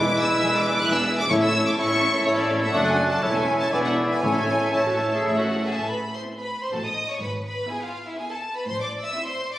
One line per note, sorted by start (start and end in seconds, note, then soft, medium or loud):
0.00 0.28 E1 medium
0.00 0.28 E2 medium
0.00 0.53 E2 medium
0.00 1.03 G#3 medium
0.00 1.00 E4 medium
0.00 1.00 B4 medium
0.00 0.21 D6 loud
0.00 1.00 E6 medium
0.09 0.21 G#3 medium
0.09 0.21 E4 medium
0.09 0.21 B4 medium
0.09 0.21 E5 medium
0.21 0.33 B3 medium
0.21 0.33 D4 medium
0.21 0.33 G#4 medium
0.21 0.33 D5 medium
0.21 0.57 E6 loud
0.33 0.76 E1 medium
0.33 0.76 E2 medium
0.33 0.44 G#3 medium
0.33 0.44 E4 medium
0.33 0.44 B4 medium
0.33 0.44 E5 medium
0.45 0.58 B3 medium
0.45 0.58 D4 medium
0.45 0.57 G#4 medium
0.45 0.57 D5 medium
0.57 0.70 G#3 medium
0.57 0.70 E4 medium
0.57 0.69 B4 medium
0.57 0.69 E5 medium
0.57 0.82 D6 loud
0.69 0.82 B3 medium
0.69 0.82 D4 medium
0.69 0.81 G#4 medium
0.69 0.81 D5 medium
0.81 1.25 E1 medium
0.81 1.25 E2 medium
0.81 0.93 G#3 medium
0.81 0.93 E4 medium
0.81 0.92 B4 medium
0.81 0.92 E5 medium
0.81 0.94 F#6 loud
0.93 1.06 B3 medium
0.93 1.06 D4 medium
0.93 1.06 G#4 medium
0.93 1.05 D5 medium
0.93 1.18 E6 medium
1.06 1.18 G#3 medium
1.06 1.18 E4 medium
1.06 1.18 B4 medium
1.06 1.18 E5 medium
1.18 1.31 B3 medium
1.18 1.31 D4 medium
1.18 1.30 G#4 medium
1.18 1.30 D5 medium
1.18 1.31 D6 loud
1.30 1.73 A1 medium
1.30 1.98 A2 medium
1.30 1.73 A2 medium
1.30 1.47 A3 medium
1.30 1.75 A3 medium
1.30 1.42 C#4 medium
1.30 1.75 E4 medium
1.30 1.47 E4 medium
1.30 1.42 E4 medium
1.30 1.42 C#5 medium
1.30 1.75 C#5 medium
1.30 1.35 C#6 loud
1.30 1.76 E6 medium
1.42 1.55 A3 medium
1.42 1.54 C#4 medium
1.42 1.55 A4 medium
1.42 1.54 E5 medium
1.42 1.66 E6 loud
1.54 1.65 C#4 medium
1.54 1.66 E4 medium
1.54 1.66 C#5 medium
1.66 1.78 A3 medium
1.66 1.76 C#4 medium
1.66 1.78 A4 medium
1.66 1.78 E5 medium
1.66 1.72 D6 loud
1.78 2.20 A1 medium
1.78 2.20 A2 medium
1.78 2.25 A3 medium
1.78 1.89 C#4 medium
1.78 1.89 E4 medium
1.78 2.25 E4 medium
1.78 1.89 C#5 medium
1.78 2.25 C#5 medium
1.78 2.25 C#6 loud
1.78 2.25 E6 medium
1.90 2.02 A3 medium
1.90 2.01 C#4 medium
1.90 2.02 A4 medium
1.90 2.02 E5 medium
2.02 2.13 C#4 medium
2.02 2.14 E4 medium
2.02 2.14 C#5 medium
2.14 2.26 A3 medium
2.14 2.25 C#4 medium
2.14 2.26 A4 medium
2.14 2.26 E5 medium
2.25 2.68 A1 medium
2.25 2.68 A2 medium
2.25 2.73 A3 medium
2.25 2.37 C#4 medium
2.25 2.73 E4 medium
2.25 2.37 E4 medium
2.25 2.37 C#5 medium
2.25 2.72 C#5 medium
2.25 2.38 C#5 loud
2.25 2.73 E6 medium
2.37 2.50 A3 medium
2.37 2.49 C#4 medium
2.37 2.49 A4 medium
2.37 2.62 D5 medium
2.37 2.50 E5 medium
2.50 2.61 C#4 medium
2.50 2.62 E4 medium
2.50 2.62 C#5 medium
2.62 2.74 A3 medium
2.62 2.74 C#4 medium
2.62 2.74 A4 medium
2.62 2.74 E5 medium
2.73 3.17 F#1 medium
2.73 3.17 F#2 medium
2.73 2.85 F#3 medium
2.73 2.90 A3 medium
2.73 3.19 A3 medium
2.73 2.91 D4 medium
2.73 3.24 D4 medium
2.73 2.85 D4 medium
2.73 2.85 F#4 medium
2.73 3.24 D5 medium
2.73 2.85 D5 medium
2.73 2.86 F#5 loud
2.73 3.24 F#6 medium
2.86 2.98 A3 medium
2.86 2.98 F#4 medium
2.86 2.98 A4 medium
2.86 2.98 F#5 medium
2.86 3.10 G#5 loud
2.98 3.10 F#3 medium
2.98 3.10 D4 medium
2.98 3.11 F#4 medium
2.98 3.11 D5 medium
3.10 3.23 A3 medium
3.10 3.23 F#4 medium
3.10 3.23 A4 medium
3.10 3.23 F#5 medium
3.10 3.35 A5 medium
3.22 3.67 E1 medium
3.22 3.67 E2 medium
3.22 3.40 A3 medium
3.22 3.74 A3 medium
3.22 3.40 C#4 medium
3.22 3.34 C#4 medium
3.22 3.71 E4 medium
3.22 3.35 E4 medium
3.22 3.74 C#5 medium
3.22 3.34 C#5 medium
3.22 3.73 E6 medium
3.34 3.48 A3 medium
3.34 3.46 C#4 medium
3.34 3.47 A4 medium
3.34 3.47 E5 medium
3.34 3.60 G#5 loud
3.47 3.60 C#4 medium
3.47 3.60 E4 medium
3.47 3.60 C#5 medium
3.59 3.73 A3 medium
3.59 3.73 C#4 medium
3.59 3.72 A4 medium
3.59 3.72 E5 medium
3.59 3.72 A5 medium
3.71 4.17 E1 medium
3.71 4.17 E2 medium
3.71 3.85 D3 medium
3.71 3.90 B3 medium
3.71 4.25 B3 medium
3.71 3.90 D4 medium
3.71 4.22 E4 medium
3.71 3.85 E4 medium
3.71 3.83 G#4 medium
3.71 3.84 D5 medium
3.71 4.22 D5 medium
3.71 3.78 G#5 medium
3.71 4.23 E6 medium
3.84 3.98 E3 medium
3.84 3.98 D4 medium
3.84 3.97 B4 medium
3.84 3.97 E5 medium
3.84 3.93 F#5 medium
3.96 4.10 D3 medium
3.96 4.10 E4 medium
3.96 4.10 G#4 medium
3.96 4.09 D5 medium
4.08 4.23 E3 soft
4.08 4.23 D4 medium
4.08 4.22 B4 medium
4.08 4.22 E5 medium
4.08 4.22 G#5 medium
4.21 4.68 A1 medium
4.21 4.96 A2 medium
4.21 4.69 A2 medium
4.21 4.35 A3 medium
4.21 4.41 A3 medium
4.21 4.74 A3 medium
4.21 4.41 C#4 medium
4.21 4.35 E4 medium
4.21 4.73 E4 medium
4.21 4.34 C#5 medium
4.21 4.73 C#5 medium
4.21 4.73 G#5 loud
4.21 4.74 E6 medium
4.34 4.49 E3 medium
4.34 4.49 C#4 medium
4.34 4.48 A4 medium
4.34 4.48 E5 medium
4.47 4.61 A3 medium
4.47 4.61 E4 medium
4.47 4.61 C#5 medium
4.59 4.74 E3 medium
4.59 4.74 C#4 medium
4.59 4.73 A4 medium
4.59 4.74 E5 soft
4.72 5.20 A1 medium
4.72 5.20 A2 medium
4.72 4.86 A3 medium
4.72 5.50 A3 medium
4.72 4.86 E4 medium
4.72 4.80 E4 medium
4.72 4.85 C#5 medium
4.72 5.50 C#5 medium
4.72 5.26 A5 medium
4.72 5.50 E6 medium
4.85 5.00 E3 medium
4.85 5.00 C#4 soft
4.85 4.98 F#4 medium
4.85 4.99 A4 medium
4.85 4.99 E5 medium
4.99 5.13 A3 soft
4.99 5.13 E4 medium
4.99 5.13 C#5 soft
5.12 5.26 E3 medium
5.12 5.26 C#4 soft
5.12 5.38 G#4 medium
5.12 5.25 A4 medium
5.12 5.25 E5 medium
5.24 5.71 A1 medium
5.24 5.71 A2 medium
5.24 5.37 A3 medium
5.24 5.30 E4 medium
5.24 5.37 E4 medium
5.24 5.37 C#5 medium
5.24 5.38 E5 medium
5.38 5.51 E3 soft
5.38 5.51 C#4 soft
5.38 5.63 F#4 medium
5.38 5.50 F#4 medium
5.38 5.51 A4 soft
5.38 5.51 E5 soft
5.38 5.64 F#5 medium
5.50 5.64 A3 soft
5.50 5.64 E4 soft
5.50 5.63 C#5 medium
5.63 5.76 E3 soft
5.63 5.76 C#4 soft
5.63 5.76 G#4 medium
5.63 5.77 G#4 medium
5.63 5.74 A4 soft
5.63 5.76 E5 soft
5.63 5.77 G#5 medium
5.75 6.15 A1 soft
5.75 6.16 A2 soft
5.75 5.88 A4 soft
5.75 5.89 A5 medium
5.88 5.96 B4 soft
5.88 6.14 B5 medium
6.13 6.21 C5 soft
6.13 6.21 C6 soft
6.25 6.62 C4 soft
6.25 6.61 E4 soft
6.37 6.62 B4 soft
6.37 6.62 B5 medium
6.63 6.74 C5 soft
6.63 6.75 C6 medium
6.74 7.12 A1 soft
6.74 7.13 A2 soft
6.74 7.10 B3 soft
6.74 7.10 F#4 soft
6.74 6.86 A4 soft
6.74 6.86 A5 medium
6.85 7.10 D#5 soft
6.85 7.11 D#6 medium
7.10 7.22 C#5 soft
7.10 7.23 C#6 medium
7.22 7.60 G#1 medium
7.22 7.61 G#2 soft
7.22 7.45 B4 soft
7.22 7.31 B5 medium
7.46 7.70 B4 soft
7.46 7.70 B5 medium
7.70 8.06 B3 soft
7.70 8.06 E4 soft
7.70 7.82 G#4 soft
7.70 7.83 G#5 medium
7.82 8.06 F4 soft
7.82 8.07 F5 medium
8.07 8.19 E4 soft
8.07 8.20 E5 soft
8.18 8.55 B3 soft
8.18 8.55 E4 soft
8.18 8.24 G#4 soft
8.18 8.31 G#5 medium
8.30 8.38 A4 soft
8.30 8.56 A5 medium
8.54 8.67 B4 soft
8.54 8.69 B5 medium
8.66 9.06 A1 soft
8.66 9.06 A2 soft
8.66 8.79 C5 medium
8.66 8.80 C6 medium
8.80 9.04 D5 medium
8.80 8.89 D6 medium
9.04 9.28 E5 soft
9.04 9.28 E6 medium
9.16 9.52 C4 soft
9.16 9.52 E4 soft
9.28 9.52 C5 soft
9.28 9.52 C6 medium
9.52 9.59 D5 soft
9.52 9.59 D6 medium